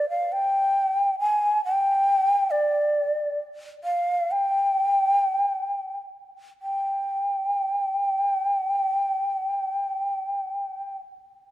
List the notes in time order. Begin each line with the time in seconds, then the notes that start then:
0.09 F5
0.32 G5
1.19 G#5
1.65 G5
2.51 D5
3.84 F5
4.31 G5
6.62 G5